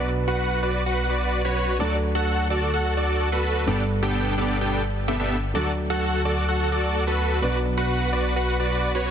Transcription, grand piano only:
0.00 1.76 B2 medium
0.00 1.77 F#3 medium
0.00 1.77 B3 medium
0.00 1.77 D4 medium
0.00 1.78 B4 medium
1.79 3.64 F#3 medium
1.79 3.64 A3 medium
1.79 3.65 D4 medium
1.79 3.65 A4 medium
3.66 5.51 G2 medium
3.66 5.52 G3 medium
3.66 5.52 B3 medium
3.66 5.52 D4 medium
3.66 5.53 A4 medium
5.54 7.39 F#3 medium
5.54 7.39 A3 medium
5.54 7.40 D4 medium
5.54 7.40 A4 medium
7.41 9.11 B2 medium
7.41 9.11 F#3 medium
7.41 9.11 B3 medium
7.41 9.11 D4 medium
7.41 9.11 B4 medium

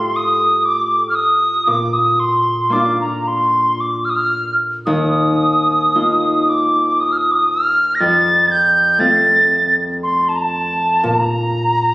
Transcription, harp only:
0.00 1.73 A2 medium
0.00 1.73 A3 soft
0.00 2.16 F4 soft
0.00 1.99 G4 soft
1.67 4.91 A#2 soft
2.70 5.91 A#3 soft
2.70 4.93 D4 soft
2.75 5.27 F4 soft
4.87 8.04 D#2 soft
5.95 9.05 A#3 soft
5.95 8.66 D#4 soft
5.95 8.48 F4 soft
8.00 11.09 F2 medium
8.99 11.09 A3 soft
8.99 11.95 C4 soft
8.99 11.52 F4 soft
11.03 11.95 A#2 medium

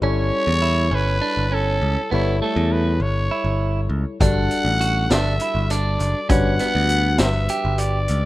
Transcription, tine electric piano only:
0.02 2.07 G3 medium
0.02 2.07 E4 medium
0.02 2.08 A4 medium
0.02 2.08 C#5 medium
2.12 4.17 G3 medium
2.12 4.17 E4 medium
2.12 4.17 A4 medium
2.12 4.18 C#5 medium
4.21 6.26 G3 medium
4.21 6.26 D4 medium
4.21 6.26 F#4 medium
4.21 6.26 A4 medium
6.29 8.25 G3 medium
6.29 8.25 D4 medium
6.29 8.25 F#4 medium
6.29 8.25 B4 medium

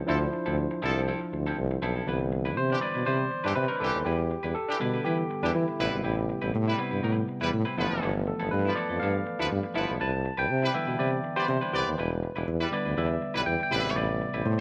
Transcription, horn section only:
0.08 0.17 F3 medium
0.08 0.17 E4 medium
0.08 0.16 A4 medium
0.83 0.99 F3 medium
0.83 0.99 E4 medium
0.83 0.99 A4 medium
2.70 2.78 E3 medium
2.70 2.78 D4 medium
2.70 2.78 G4 loud
3.45 3.52 E3 loud
3.45 3.52 D4 medium
3.45 3.52 G4 loud
3.81 3.97 E3 medium
3.81 3.97 D4 medium
3.81 3.97 G4 loud
4.69 4.76 E3 medium
4.69 4.76 D4 medium
4.69 4.76 G4 loud
5.43 5.50 E3 medium
5.43 5.50 D4 loud
5.43 5.50 G4 loud
5.79 5.95 G3 loud
5.79 5.95 E4 medium
5.79 5.95 B4 loud
6.67 6.74 G3 medium
6.67 6.74 E4 loud
6.67 6.74 B4 loud
7.41 7.49 G3 loud
7.41 7.48 E4 medium
7.41 7.49 B4 loud
7.78 8.10 F3 loud
7.78 8.10 E4 medium
7.78 8.10 B4 loud
8.65 8.73 F3 medium
8.65 8.73 E4 loud
8.65 8.73 B4 loud
9.39 9.47 F3 medium
9.39 9.47 E4 medium
9.39 9.47 B4 loud
9.76 9.92 F3 medium
9.76 9.92 E4 loud
9.76 9.92 B4 loud
10.63 10.70 G3 medium
10.63 10.70 E4 medium
10.63 10.70 B4 loud
11.37 11.44 B3 medium
11.37 11.44 G4 loud
11.37 11.44 D5 loud
11.73 11.89 B3 loud
11.73 11.89 G4 medium
11.73 11.89 D5 loud
12.60 12.68 G3 loud
12.60 12.68 E4 medium
12.60 12.68 B4 medium
13.34 13.42 G3 medium
13.34 13.42 E4 loud
13.34 13.42 B4 loud
13.71 13.92 G3 loud
13.71 13.92 E4 loud
13.71 13.92 B4 loud

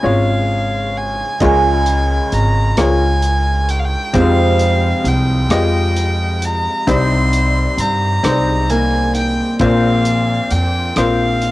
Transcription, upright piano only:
0.00 1.37 C#2 soft
0.00 1.37 C#3 medium
0.00 0.03 G#3 medium
0.00 1.14 G#3 medium
0.00 0.04 C#4 medium
0.00 1.14 C#4 medium
0.00 0.03 F4 medium
0.00 1.14 F4 medium
0.00 0.04 C#5 medium
0.00 1.14 C#5 medium
1.41 4.11 C#2 medium
1.41 4.11 C#3 medium
1.41 2.51 G#3 medium
1.41 2.51 F4 medium
1.41 2.52 A#4 medium
1.41 2.52 C#5 medium
2.78 3.88 G#3 medium
2.78 3.88 F4 medium
2.78 3.88 A#4 soft
2.78 3.88 C#5 medium
4.13 6.83 F1 medium
4.13 6.83 F2 medium
4.13 5.24 G#3 medium
4.13 5.24 F4 medium
4.13 5.24 G4 medium
4.13 5.24 C5 medium
5.50 6.60 G#3 medium
5.50 6.60 F4 medium
5.50 6.60 G4 medium
5.50 6.61 D#5 medium
6.87 9.56 C2 medium
6.87 9.56 C3 medium
6.87 7.97 G3 medium
6.87 7.97 C4 medium
6.87 7.97 D#4 medium
6.87 7.97 C5 medium
8.23 9.33 G3 medium
8.23 9.33 C4 soft
8.23 9.33 D#4 medium
8.23 9.34 C5 medium
9.61 11.52 A#1 medium
9.61 11.52 A#2 medium
9.61 10.70 A#3 medium
9.61 10.70 C4 medium
9.61 10.70 F4 medium
9.61 10.70 C5 medium
10.97 11.52 A#3 medium
10.97 11.52 C4 medium
10.97 11.52 F4 medium
10.97 11.52 C5 medium

